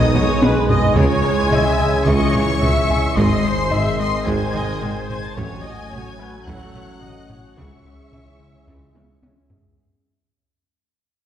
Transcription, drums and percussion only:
0.15 taiko low-mid
0.42 taiko high
0.69 taiko low
0.97 taiko
1.24 taiko rim
1.52 taiko low-mid
2.07 taiko
2.35 taiko low-mid
2.62 taiko low-mid
2.90 taiko low-mid
3.17 taiko
3.72 taiko low-mid
4.27 taiko
4.55 taiko low-mid
4.82 taiko low-mid
5.10 taiko low-mid
5.37 taiko
5.92 taiko low-mid
6.20 taiko rim
6.47 taiko
6.75 taiko low-mid
7.02 taiko low-mid
7.30 taiko low-mid
7.57 taiko
8.12 taiko low-mid
8.68 taiko
8.95 taiko high
9.23 taiko high
9.50 taiko low

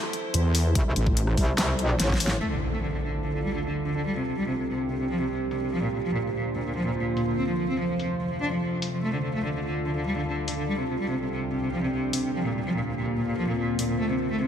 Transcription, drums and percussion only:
0.03 cross-stick
0.13 closed hi-hat
0.34 closed hi-hat
0.55 open hi-hat
0.75 kick, closed hi-hat
0.96 closed hi-hat
1.07 kick
1.17 closed hi-hat
1.27 cross-stick
1.37 kick, open hi-hat
1.58 snare, clap, closed hi-hat
1.79 closed hi-hat
1.89 cross-stick
2.00 snare, closed hi-hat
2.10 kick, snare
2.20 open hi-hat
2.27 snare
3.86 open hi-hat
5.51 open hi-hat
7.17 open hi-hat
7.99 open hi-hat
8.82 open hi-hat
10.48 open hi-hat
12.13 open hi-hat
13.79 open hi-hat

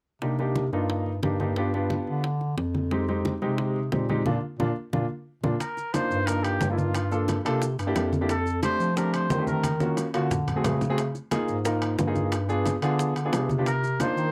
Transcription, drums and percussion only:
0.22 high bongo, high conga
0.39 high bongo, high conga
0.55 high bongo, high conga
0.73 high bongo, high conga
0.89 high bongo, high conga
1.06 high conga
1.23 high bongo, low bongo, high conga
1.40 high bongo, high conga
1.56 high bongo, high conga
1.74 high bongo, high conga
1.90 high bongo, high conga
2.07 high conga
2.24 high bongo, high conga
2.41 high bongo, high conga
2.58 high bongo, low bongo, high conga
2.75 high bongo, high conga
2.91 high bongo, high conga
3.08 high bongo, high conga
3.25 high bongo, high conga
3.42 high bongo, high conga
3.58 high bongo, high conga
3.76 high conga
3.92 high bongo, low bongo, high conga
4.09 high bongo, high conga
4.26 low bongo, high conga
4.60 low bongo, high conga
4.93 low bongo, high conga
5.44 low bongo, high conga
5.60 high bongo, high conga, high timbale, maracas
5.77 high bongo, high conga, maracas
5.94 high bongo, high conga, high timbale, low timbale, maracas
6.11 high bongo, high conga, maracas
6.27 high bongo, high conga, high timbale, maracas
6.44 high conga, high timbale, maracas
6.61 high bongo, low bongo, high conga, low timbale, maracas
6.78 high bongo, high conga, maracas
6.95 high bongo, high conga, high timbale, maracas
7.11 high bongo, high conga, maracas
7.28 high bongo, high conga, high timbale, low timbale, maracas
7.46 high conga, high timbale, maracas
7.62 high bongo, high conga, maracas
7.79 high bongo, high conga, high timbale, maracas
7.96 high bongo, low bongo, high conga, high timbale, low timbale, maracas
8.13 high bongo, high conga, maracas
8.29 high bongo, high conga, high timbale, maracas
8.46 high bongo, high conga, maracas
8.63 high bongo, high conga, high timbale, low timbale, maracas
8.80 high bongo, high conga, maracas
8.97 high bongo, high conga, high timbale, maracas
9.13 high conga, high timbale, maracas
9.30 high bongo, low bongo, high conga, low timbale, maracas
9.47 high bongo, high conga, maracas
9.64 high bongo, high conga, high timbale, maracas
9.80 high bongo, high conga, maracas
9.97 high bongo, high timbale, low timbale, maracas
10.14 high timbale, maracas
10.31 high bongo, low conga, maracas
10.48 high bongo, low conga, high timbale, maracas
10.64 high bongo, low bongo, low conga, high timbale, low timbale, maracas
10.81 high bongo, low conga, maracas
10.98 high bongo, high conga, high timbale, maracas
11.15 high bongo, high conga, maracas
11.31 high bongo, high conga, high timbale, low timbale, maracas
11.48 high bongo, high conga, maracas
11.65 high bongo, high conga, high timbale, maracas
11.82 high conga, high timbale, maracas
11.99 high bongo, low bongo, high conga, low timbale, maracas
12.16 high bongo, high conga, maracas
12.32 high bongo, high conga, high timbale, maracas
12.49 high bongo, high conga, maracas
12.66 high bongo, high conga, high timbale, low timbale, maracas
12.82 high conga, high timbale, maracas
12.99 high bongo, high conga, maracas
13.16 high bongo, high conga, high timbale, maracas
13.33 high bongo, low bongo, high conga, high timbale, low timbale, maracas
13.49 high bongo, high conga, maracas
13.66 high bongo, high conga, high timbale, maracas
13.83 high bongo, high conga, maracas
14.00 high bongo, high conga, high timbale, low timbale, maracas
14.17 high bongo, high conga, maracas

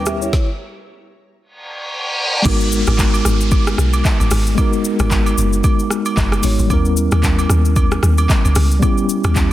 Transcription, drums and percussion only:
0.06 cross-stick, shaker
0.22 shaker
0.33 kick, snare
2.45 kick, crash, high agogo, shaker
2.61 shaker
2.72 shaker
2.87 cross-stick, high agogo, shaker
2.99 kick, clap, shaker
3.14 high agogo, shaker
3.25 cross-stick, shaker
3.41 shaker
3.51 kick, high agogo, shaker
3.67 cross-stick, shaker
3.78 cross-stick, shaker
3.93 high agogo, shaker
4.05 kick, clap, low woodblock, shaker
4.20 high agogo, shaker
4.31 cross-stick, open hi-hat, shaker
4.47 shaker
4.58 kick, high agogo, shaker
4.73 shaker
4.85 shaker
4.99 cross-stick, high agogo, shaker
5.11 kick, clap, shaker
5.26 high agogo, shaker
5.38 shaker
5.53 shaker
5.64 kick, high agogo, shaker
5.79 shaker
5.90 cross-stick, shaker
6.05 high agogo, shaker
6.17 kick, clap, low woodblock, shaker
6.32 cross-stick, high agogo, shaker
6.43 open hi-hat, shaker
6.59 shaker
6.70 kick, high agogo, shaker
6.85 shaker
6.97 shaker
7.12 cross-stick, high agogo, shaker
7.23 kick, clap, shaker
7.39 high agogo, shaker
7.50 cross-stick, shaker
7.65 shaker
7.76 kick, high agogo, shaker
7.92 cross-stick, shaker
8.03 cross-stick, shaker
8.18 high agogo, shaker
8.29 kick, clap, low woodblock, shaker
8.45 high agogo, shaker
8.55 cross-stick, open hi-hat, shaker
8.71 shaker
8.82 kick, high agogo, shaker
8.98 shaker
9.09 shaker
9.24 cross-stick, high agogo, shaker
9.36 kick, clap, shaker

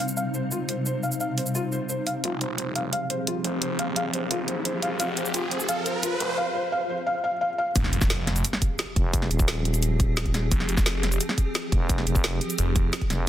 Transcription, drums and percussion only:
0.08 cabasa
0.17 cabasa
0.34 cabasa
0.51 cabasa
0.69 open hi-hat, cabasa
0.86 cabasa
1.03 cabasa
1.12 cabasa
1.20 cabasa
1.38 open hi-hat, cabasa
1.46 cabasa
1.55 cabasa
1.72 cabasa
1.89 cabasa
2.07 open hi-hat, cabasa
2.24 closed hi-hat
2.41 closed hi-hat
2.58 closed hi-hat
2.76 closed hi-hat
2.93 closed hi-hat
3.10 closed hi-hat
3.27 closed hi-hat
3.44 closed hi-hat
3.62 closed hi-hat
3.79 closed hi-hat
3.96 closed hi-hat
4.13 closed hi-hat
4.31 closed hi-hat
4.48 closed hi-hat
4.65 closed hi-hat
4.82 closed hi-hat
5.00 closed hi-hat, cabasa
5.17 closed hi-hat, cabasa
5.26 cabasa
5.34 closed hi-hat, cabasa
5.51 closed hi-hat
5.60 cabasa
5.69 closed hi-hat, cabasa
5.86 closed hi-hat, cabasa
6.03 closed hi-hat, cabasa
6.20 closed hi-hat
7.76 kick, closed hi-hat, cabasa
7.84 snare
7.93 closed hi-hat, cabasa
8.01 kick, snare, cabasa
8.10 snare, closed hi-hat, cabasa
8.27 snare, closed hi-hat
8.36 closed hi-hat, cabasa
8.45 closed hi-hat, cabasa
8.53 snare
8.62 kick, closed hi-hat, cabasa
8.79 snare, closed hi-hat, cabasa
8.96 kick, closed hi-hat
9.13 kick, closed hi-hat, cabasa
9.22 snare
9.31 closed hi-hat, cabasa
9.39 kick, cabasa
9.48 snare, closed hi-hat, cabasa
9.65 closed hi-hat
9.74 closed hi-hat, cabasa
9.82 closed hi-hat, cabasa
10.00 kick, closed hi-hat, cabasa
10.17 snare, closed hi-hat, cabasa
10.26 kick, closed hi-hat
10.34 snare, closed hi-hat, cabasa
10.51 kick, closed hi-hat, cabasa
10.60 snare
10.69 closed hi-hat, cabasa
10.77 kick, snare, cabasa
10.86 snare, closed hi-hat, cabasa
11.03 snare, closed hi-hat
11.12 closed hi-hat, cabasa
11.21 closed hi-hat, cabasa
11.29 snare
11.38 kick, closed hi-hat, cabasa
11.55 snare, closed hi-hat, cabasa
11.72 kick, closed hi-hat
11.89 kick, closed hi-hat, cabasa
11.98 snare
12.07 closed hi-hat, cabasa
12.15 kick, cabasa
12.24 snare, closed hi-hat, cabasa
12.41 closed hi-hat
12.50 closed hi-hat, cabasa
12.58 closed hi-hat, cabasa
12.76 kick, closed hi-hat, cabasa
12.93 snare, closed hi-hat, cabasa
13.01 kick, closed hi-hat
13.10 snare, closed hi-hat, cabasa

